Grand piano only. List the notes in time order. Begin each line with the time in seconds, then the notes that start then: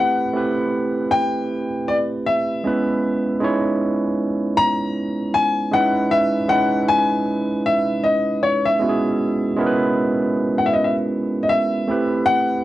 Already playing: F#5
1.11 G5
1.88 D5
2.26 E5
4.57 A#5
5.34 G#5
5.73 F#5
6.11 E5
6.49 F#5
6.88 G#5
7.66 E5
8.04 D#5
8.43 C#5
8.65 E5
10.58 F#5
10.66 E5
10.73 D#5
10.84 E5
11.43 D#5
11.49 E5
12.26 F#5